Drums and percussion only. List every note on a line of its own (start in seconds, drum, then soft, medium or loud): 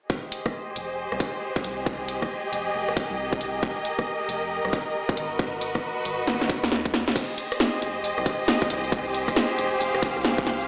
0.10 kick loud
0.32 closed hi-hat medium
0.46 kick medium
0.46 cross-stick medium
0.76 closed hi-hat medium
1.12 cross-stick medium
1.20 kick medium
1.20 closed hi-hat loud
1.56 kick medium
1.64 closed hi-hat medium
1.86 kick loud
2.08 closed hi-hat medium
2.22 kick medium
2.22 cross-stick medium
2.53 closed hi-hat medium
2.89 cross-stick medium
2.97 kick loud
2.97 closed hi-hat loud
3.33 kick loud
3.41 closed hi-hat medium
3.63 kick loud
3.85 closed hi-hat medium
3.99 kick medium
3.99 cross-stick medium
4.29 closed hi-hat medium
4.65 cross-stick medium
4.73 kick loud
4.73 closed hi-hat medium
5.09 kick loud
5.17 closed hi-hat medium
5.39 kick loud
5.61 closed hi-hat medium
5.75 kick medium
5.75 cross-stick medium
6.05 closed hi-hat medium
6.27 snare medium
6.41 snare medium
6.50 kick loud
6.50 closed hi-hat medium
6.64 snare medium
6.72 snare medium
6.85 kick loud
6.94 snare medium
6.94 closed hi-hat medium
7.08 snare medium
7.16 kick loud
7.16 closed hi-hat medium
7.16 crash medium
7.38 closed hi-hat loud
7.52 cross-stick medium
7.52 closed hi-hat medium
7.60 snare loud
7.60 closed hi-hat medium
7.82 closed hi-hat medium
8.04 closed hi-hat medium
8.18 cross-stick medium
8.26 kick loud
8.26 closed hi-hat loud
8.48 snare loud
8.48 closed hi-hat medium
8.62 kick loud
8.70 closed hi-hat medium
8.84 closed hi-hat soft
8.92 kick loud
8.92 closed hi-hat medium
9.14 closed hi-hat loud
9.28 kick medium
9.28 cross-stick medium
9.28 closed hi-hat medium
9.36 snare loud
9.36 closed hi-hat medium
9.59 closed hi-hat medium
9.81 closed hi-hat medium
9.95 cross-stick medium
10.02 kick loud
10.02 closed hi-hat loud
10.17 cross-stick soft
10.25 snare loud
10.25 closed hi-hat medium
10.38 kick loud
10.47 snare medium
10.47 closed hi-hat medium
10.61 closed hi-hat soft